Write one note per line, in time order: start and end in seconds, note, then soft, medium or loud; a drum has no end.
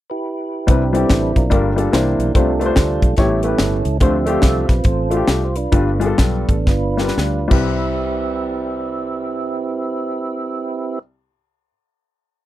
0.10 0.68 E4 medium
0.10 0.67 G4 medium
0.10 0.67 B4 medium
0.67 1.04 C2 medium
0.67 1.31 C3 medium
0.67 0.81 G3 medium
0.67 0.81 C4 medium
0.67 1.48 C4 medium
0.67 1.33 D4 soft
0.67 0.81 E4 medium
0.67 0.93 E4 medium
0.67 0.95 G4 medium
0.67 1.32 B4 soft
0.67 0.82 B4 medium
0.67 kick loud
0.67 closed hi-hat medium
0.93 1.37 G3 medium
0.93 1.37 C4 medium
0.93 1.37 E4 medium
0.93 1.48 E4 medium
0.93 1.38 G4 medium
0.93 1.33 A4 medium
0.93 closed hi-hat medium
1.09 1.32 A1 medium
1.09 kick medium
1.09 snare medium
1.09 closed hi-hat medium
1.36 1.49 B1 medium
1.36 1.90 D4 medium
1.36 1.52 F4 medium
1.36 1.75 A#4 medium
1.36 kick medium
1.36 closed hi-hat medium
1.50 1.87 G1 medium
1.50 1.90 G2 medium
1.50 1.71 G3 medium
1.50 1.91 A3 soft
1.50 1.92 A#3 soft
1.50 1.72 D4 medium
1.50 1.72 F4 medium
1.50 1.92 F4 medium
1.50 1.72 A#4 medium
1.50 kick medium
1.50 closed hi-hat medium
1.76 1.92 G3 medium
1.76 1.91 D4 soft
1.76 1.93 F4 medium
1.76 1.93 A4 medium
1.76 closed hi-hat medium
1.92 2.15 C2 medium
1.92 2.32 C3 medium
1.92 2.33 E3 soft
1.92 2.28 A#3 medium
1.92 2.33 A#3 medium
1.92 2.28 D4 medium
1.92 2.34 D4 medium
1.92 2.28 E4 medium
1.92 2.32 G4 medium
1.92 2.28 C5 medium
1.92 snare loud
1.92 closed hi-hat medium
1.96 2.33 E4 medium
2.19 2.32 B1 medium
2.19 closed hi-hat medium
2.34 2.70 C2 medium
2.34 2.98 C3 medium
2.34 3.14 G3 soft
2.34 2.48 A3 medium
2.34 3.15 A3 soft
2.34 2.48 D4 medium
2.34 2.76 D4 medium
2.34 2.49 F4 medium
2.34 2.77 F4 medium
2.34 2.75 A4 medium
2.34 2.49 C5 medium
2.34 kick medium
2.34 closed hi-hat medium
2.59 3.04 A3 medium
2.59 3.04 D4 medium
2.59 3.04 F4 medium
2.59 2.64 B4 medium
2.59 closed hi-hat medium
2.66 3.07 C5 medium
2.76 2.98 D2 medium
2.76 3.15 D4 medium
2.76 3.16 F4 medium
2.76 3.19 A4 medium
2.76 kick medium
2.76 snare loud
2.76 closed hi-hat medium
3.02 3.15 B1 medium
3.02 kick medium
3.02 closed hi-hat medium
3.17 3.53 A1 medium
3.17 3.81 A2 medium
3.17 3.82 G3 soft
3.17 3.38 A3 medium
3.17 3.83 B3 soft
3.17 3.45 C#4 medium
3.17 3.38 E4 medium
3.17 3.44 E4 medium
3.17 3.38 G4 medium
3.17 3.30 G4 medium
3.17 3.39 C#5 medium
3.17 kick medium
3.17 snare soft
3.17 closed hi-hat medium
3.43 3.75 A3 medium
3.43 3.98 C#4 medium
3.43 3.75 E4 medium
3.43 3.98 E4 medium
3.43 3.75 G4 soft
3.43 3.97 A4 medium
3.43 3.76 B4 medium
3.43 closed hi-hat medium
3.58 3.81 G1 medium
3.58 snare loud
3.58 closed hi-hat medium
3.85 3.99 C#2 medium
3.85 closed hi-hat medium
4.00 4.37 D2 medium
4.00 4.65 D3 medium
4.00 4.66 F3 soft
4.00 4.14 A3 medium
4.00 4.28 C4 medium
4.00 4.15 D4 medium
4.00 4.15 F4 medium
4.00 4.25 G4 medium
4.00 4.15 C5 medium
4.00 4.66 E5 medium
4.00 kick loud
4.00 closed hi-hat medium
4.26 4.71 A3 medium
4.26 5.09 C4 medium
4.26 4.71 D4 medium
4.26 4.71 F4 medium
4.26 4.86 F4 medium
4.26 4.71 G4 medium
4.26 4.66 A4 medium
4.26 closed hi-hat medium
4.42 4.65 C2 medium
4.42 kick medium
4.42 snare loud
4.42 closed hi-hat medium
4.69 4.83 B1 medium
4.69 4.85 B4 medium
4.69 kick medium
4.69 snare soft
4.69 closed hi-hat medium
4.84 5.22 A1 medium
4.84 5.56 F4 medium
4.84 5.27 A4 medium
4.84 5.30 C5 loud
4.84 kick medium
4.84 closed hi-hat medium
5.10 5.44 A3 medium
5.10 5.44 D4 soft
5.10 5.44 F4 medium
5.10 5.16 F#4 soft
5.10 closed hi-hat medium
5.17 5.47 G4 medium
5.28 5.66 C2 medium
5.28 5.43 A4 medium
5.28 snare loud
5.28 closed hi-hat medium
5.45 5.57 C5 medium
5.56 6.03 D4 medium
5.56 5.74 F4 medium
5.56 5.98 B4 medium
5.56 closed hi-hat medium
5.72 6.12 G1 loud
5.72 6.45 G2 medium
5.72 5.88 G3 medium
5.72 6.07 A3 soft
5.72 6.03 B3 soft
5.72 5.88 D4 medium
5.72 5.88 F4 medium
5.72 6.08 F4 medium
5.72 5.88 B4 medium
5.72 kick loud
5.72 closed hi-hat medium
6.00 6.51 G3 medium
6.00 6.96 B3 medium
6.00 6.51 D4 medium
6.00 6.68 D4 medium
6.00 6.51 F4 medium
6.00 6.51 G4 medium
6.00 6.06 G#4 medium
6.00 closed hi-hat medium
6.06 6.54 A4 medium
6.18 6.44 B1 medium
6.18 kick medium
6.18 snare loud
6.18 closed hi-hat medium
6.49 6.65 A1 medium
6.49 6.66 A4 medium
6.49 kick medium
6.49 closed hi-hat medium
6.67 7.10 G1 medium
6.67 7.48 D4 medium
6.67 7.48 F4 medium
6.67 7.48 B4 medium
6.67 kick medium
6.67 snare soft
6.97 7.37 G3 medium
6.97 7.37 D4 soft
6.97 7.38 F4 soft
6.97 7.03 A#4 soft
6.97 snare medium
7.04 7.40 B4 medium
7.08 snare soft
7.17 7.46 D2 medium
7.17 snare medium
7.48 10.97 C2 medium
7.48 10.98 C2 medium
7.48 10.95 G3 medium
7.48 10.96 C4 medium
7.48 10.98 E4 medium
7.48 10.98 E4 soft
7.48 kick medium
7.48 crash medium
7.52 10.99 C4 medium
7.52 10.99 G4 soft
7.52 10.99 B4 soft
7.52 10.99 B4 medium
7.52 10.99 E5 medium